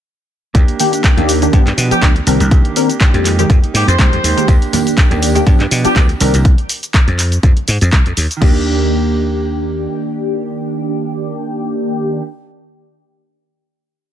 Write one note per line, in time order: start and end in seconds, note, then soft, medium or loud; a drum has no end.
0.54 0.63 D#2 loud
0.54 0.92 A#3 medium
0.54 0.93 D4 medium
0.54 0.91 G4 loud
0.54 kick loud
0.54 closed hi-hat medium
0.54 cabasa soft
0.68 closed hi-hat soft
0.79 1.14 D#3 medium
0.79 1.14 A#3 medium
0.79 1.14 D4 medium
0.79 1.15 G4 loud
0.79 open hi-hat loud
0.79 cabasa medium
0.92 1.03 D4 medium
0.92 1.04 G4 medium
0.92 closed hi-hat soft
0.92 cabasa soft
1.03 1.27 A#3 medium
1.03 1.28 D4 loud
1.03 1.29 G4 medium
1.03 kick loud
1.03 clap loud
1.03 closed hi-hat medium
1.03 cabasa soft
1.17 1.47 D#2 loud
1.17 1.39 D#3 loud
1.17 1.39 A#3 medium
1.17 1.39 D4 medium
1.17 1.39 G4 loud
1.17 closed hi-hat soft
1.28 1.53 A#3 medium
1.28 1.52 D4 medium
1.28 1.53 G4 medium
1.28 open hi-hat loud
1.28 cabasa medium
1.42 1.52 D#3 loud
1.42 1.52 A#3 medium
1.42 1.52 D4 medium
1.42 1.52 G4 loud
1.42 closed hi-hat soft
1.42 cabasa soft
1.52 1.62 G2 medium
1.52 1.66 F3 medium
1.52 1.66 F3 loud
1.52 1.67 B3 medium
1.52 1.66 B3 medium
1.52 1.66 D4 medium
1.52 1.66 G4 loud
1.52 1.65 G4 medium
1.52 kick loud
1.52 closed hi-hat medium
1.52 cabasa soft
1.66 1.74 G2 loud
1.66 1.77 B3 soft
1.66 1.78 D4 medium
1.66 1.78 G4 medium
1.66 clap soft
1.66 closed hi-hat soft
1.77 1.90 B2 medium
1.77 1.91 F3 medium
1.77 1.91 B3 medium
1.77 1.91 D4 medium
1.77 1.89 G4 medium
1.77 open hi-hat loud
1.77 cabasa medium
1.90 2.10 F3 medium
1.90 2.10 B3 medium
1.90 2.02 B3 medium
1.90 2.10 D4 medium
1.90 2.02 D4 medium
1.90 2.02 G4 medium
1.90 2.08 G4 medium
1.90 2.10 G4 loud
1.90 muted slap bass stroke soft
1.90 closed hi-hat soft
1.90 cabasa soft
2.02 2.19 D2 loud
2.02 2.16 F3 medium
2.02 2.15 D4 loud
2.02 2.14 G4 medium
2.02 kick loud
2.02 clap loud
2.02 closed hi-hat medium
2.02 cabasa soft
2.15 2.27 B3 soft
2.15 2.27 D4 medium
2.15 2.27 G4 soft
2.15 closed hi-hat soft
2.26 2.35 C2 medium
2.26 2.50 D#3 medium
2.26 2.40 D#3 medium
2.26 2.50 A#3 medium
2.26 2.40 C4 medium
2.26 2.40 D4 medium
2.26 2.51 D4 medium
2.26 2.51 G4 medium
2.26 2.40 A#4 loud
2.26 open hi-hat loud
2.26 cabasa medium
2.40 2.47 C2 medium
2.40 closed hi-hat soft
2.40 cabasa soft
2.51 2.60 C2 loud
2.51 2.89 D#3 loud
2.51 2.89 A#3 loud
2.51 2.89 D4 medium
2.51 2.87 G4 loud
2.51 kick loud
2.51 closed hi-hat medium
2.51 cabasa soft
2.65 closed hi-hat soft
2.76 2.89 D#3 medium
2.76 2.89 C4 medium
2.76 2.89 D4 medium
2.76 2.89 A#4 loud
2.76 open hi-hat loud
2.76 cabasa medium
2.89 2.99 A#3 soft
2.89 3.00 D4 medium
2.89 3.00 G4 medium
2.89 closed hi-hat soft
2.89 cabasa soft
3.00 3.24 D#3 medium
3.00 3.24 A#3 medium
3.00 3.26 D4 loud
3.00 3.26 G4 loud
3.00 kick loud
3.00 clap loud
3.00 closed hi-hat medium
3.00 cabasa soft
3.14 3.43 F2 loud
3.14 3.32 D#3 medium
3.14 3.33 G#3 medium
3.14 3.33 A#3 medium
3.14 3.33 G4 medium
3.14 closed hi-hat soft
3.24 3.63 G#3 medium
3.24 3.63 A#3 medium
3.24 3.62 D#4 medium
3.24 3.61 G4 medium
3.24 clap soft
3.24 open hi-hat loud
3.24 cabasa medium
3.38 3.57 D#3 loud
3.38 3.57 G#3 medium
3.38 3.57 A#3 medium
3.38 3.58 G4 loud
3.38 closed hi-hat soft
3.38 cabasa soft
3.50 3.58 F2 medium
3.50 kick loud
3.50 closed hi-hat medium
3.50 cabasa soft
3.62 3.73 A#3 soft
3.62 3.74 D#4 medium
3.62 3.74 G4 medium
3.62 muted slap bass stroke soft
3.62 closed hi-hat soft
3.74 3.83 G#2 loud
3.74 3.87 G#3 medium
3.74 3.88 A#3 medium
3.74 3.87 D#4 medium
3.74 3.85 G4 loud
3.74 3.86 G4 medium
3.74 open hi-hat loud
3.74 cabasa medium
3.87 3.95 F2 loud
3.87 3.98 A#3 soft
3.87 3.99 D#4 medium
3.87 3.99 G4 medium
3.87 4.53 C5 loud
3.87 closed hi-hat soft
3.87 cabasa soft
3.98 4.08 C2 loud
3.98 4.18 D#3 medium
3.98 4.12 G#3 medium
3.98 4.18 G#3 medium
3.98 4.18 A#3 medium
3.98 4.12 A#3 loud
3.98 4.12 D#4 loud
3.98 4.19 G4 loud
3.98 4.10 G4 loud
3.98 kick loud
3.98 clap loud
3.98 closed hi-hat medium
3.98 cabasa soft
4.12 4.20 F2 medium
4.12 4.23 A#3 soft
4.12 4.24 D#4 medium
4.12 4.23 G4 medium
4.12 closed hi-hat soft
4.23 4.32 D#2 medium
4.23 4.48 G#3 medium
4.23 4.46 A#3 medium
4.23 4.48 D#4 medium
4.23 4.48 G4 medium
4.23 open hi-hat loud
4.23 cabasa medium
4.37 4.47 D#3 medium
4.37 4.47 G#3 medium
4.37 4.47 A#3 medium
4.37 4.47 G4 loud
4.37 closed hi-hat soft
4.37 cabasa soft
4.48 4.57 D#2 loud
4.48 4.86 A#3 medium
4.48 4.86 D4 loud
4.48 4.84 G4 loud
4.48 kick loud
4.48 closed hi-hat medium
4.48 tambourine soft
4.48 cabasa soft
4.62 closed hi-hat soft
4.62 tambourine soft
4.73 5.08 D#3 medium
4.73 5.08 A#3 medium
4.73 5.08 D4 medium
4.73 5.08 G4 loud
4.73 open hi-hat loud
4.73 tambourine medium
4.73 high conga medium
4.73 low conga medium
4.73 cabasa medium
4.85 4.97 D4 medium
4.85 4.97 G4 medium
4.85 closed hi-hat soft
4.85 tambourine soft
4.85 cabasa soft
4.97 5.20 A#3 medium
4.97 5.21 D4 loud
4.97 5.23 G4 loud
4.97 kick loud
4.97 clap loud
4.97 closed hi-hat medium
4.97 tambourine soft
4.97 cabasa soft
5.11 5.40 D#2 loud
5.11 5.32 D#3 loud
5.11 5.32 A#3 medium
5.11 5.32 D4 medium
5.11 5.33 G4 loud
5.11 closed hi-hat soft
5.11 tambourine soft
5.11 low conga medium
5.21 5.46 A#3 medium
5.21 5.46 D4 medium
5.21 5.47 G4 medium
5.21 open hi-hat loud
5.21 tambourine medium
5.21 cabasa medium
5.35 5.45 D#3 loud
5.35 5.45 A#3 loud
5.35 5.45 D4 medium
5.35 5.45 G4 loud
5.35 closed hi-hat soft
5.35 tambourine soft
5.35 high conga medium
5.35 cabasa soft
5.46 5.55 G2 loud
5.46 5.60 F3 medium
5.46 5.59 F3 loud
5.46 5.60 B3 medium
5.46 5.60 D4 medium
5.46 5.60 D4 loud
5.46 5.60 G4 loud
5.46 5.58 G4 medium
5.46 kick loud
5.46 closed hi-hat medium
5.46 tambourine soft
5.46 cabasa soft
5.59 5.67 G2 loud
5.59 5.70 B3 medium
5.59 5.71 D4 medium
5.59 5.71 G4 medium
5.59 clap soft
5.59 closed hi-hat soft
5.59 tambourine soft
5.71 5.84 B2 loud
5.71 5.84 F3 medium
5.71 5.85 B3 medium
5.71 5.84 D4 medium
5.71 5.83 G4 medium
5.71 open hi-hat loud
5.71 tambourine medium
5.71 cabasa medium
5.84 6.03 F3 loud
5.84 6.03 B3 medium
5.84 5.95 B3 medium
5.84 6.03 D4 medium
5.84 5.96 D4 medium
5.84 5.96 G4 medium
5.84 6.02 G4 medium
5.84 6.03 G4 loud
5.84 muted slap bass stroke soft
5.84 closed hi-hat soft
5.84 tambourine soft
5.84 cabasa soft
5.95 6.12 D2 loud
5.95 6.09 F3 medium
5.95 6.09 B3 medium
5.95 6.09 D4 medium
5.95 6.07 G4 loud
5.95 kick loud
5.95 clap loud
5.95 closed hi-hat medium
5.95 tambourine soft
5.95 cabasa soft
6.08 6.20 B3 soft
6.08 6.20 D4 soft
6.08 6.20 G4 medium
6.08 closed hi-hat soft
6.08 tambourine soft
6.20 6.29 C2 medium
6.20 6.45 D#3 medium
6.20 6.33 D#3 medium
6.20 6.45 A#3 medium
6.20 6.33 C4 medium
6.20 6.33 D4 medium
6.20 6.46 D4 medium
6.20 6.46 G4 medium
6.20 6.34 A#4 medium
6.20 open hi-hat loud
6.20 tambourine medium
6.20 cabasa medium
6.34 6.41 C2 medium
6.34 closed hi-hat soft
6.34 tambourine soft
6.34 cabasa soft
6.45 6.54 C2 loud
6.45 kick loud
6.45 closed hi-hat medium
6.45 cabasa soft
6.58 closed hi-hat soft
6.69 open hi-hat loud
6.69 cabasa medium
6.83 closed hi-hat soft
6.83 cabasa soft
6.94 kick loud
6.94 clap loud
6.94 closed hi-hat medium
6.94 cabasa soft
7.08 7.37 F2 loud
7.08 closed hi-hat soft
7.19 clap soft
7.19 open hi-hat loud
7.19 cabasa medium
7.32 closed hi-hat soft
7.32 cabasa soft
7.43 7.52 F2 loud
7.43 kick loud
7.43 closed hi-hat medium
7.43 cabasa soft
7.57 muted slap bass stroke soft
7.57 closed hi-hat soft
7.68 7.77 G#2 loud
7.68 open hi-hat loud
7.68 cabasa medium
7.81 7.89 F2 loud
7.81 closed hi-hat soft
7.81 cabasa soft
7.93 8.01 C2 loud
7.93 kick loud
7.93 clap loud
7.93 closed hi-hat medium
7.93 cabasa soft
8.06 8.13 F2 medium
8.06 closed hi-hat soft
8.17 8.26 D#2 medium
8.17 open hi-hat loud
8.17 cabasa medium
8.31 closed hi-hat soft
8.31 cabasa soft
8.37 12.21 D#3 medium
8.42 9.85 D#2 loud
8.42 12.22 A#3 medium
8.42 12.27 A#3 loud
8.42 12.22 D4 medium
8.42 12.23 G4 loud
8.42 kick loud
8.42 crash medium
8.49 12.33 D4 medium
8.53 12.38 G4 loud